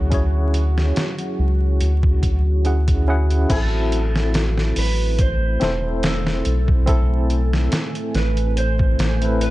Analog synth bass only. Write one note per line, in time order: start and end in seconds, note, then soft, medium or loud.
0.00 0.92 D2 medium
1.39 1.80 C#2 loud
1.81 3.46 D2 loud
3.50 4.73 A1 loud
4.77 5.57 A1 loud
5.62 6.42 E1 loud
6.46 7.69 B1 loud
8.15 8.95 A1 loud
8.99 9.50 A1 medium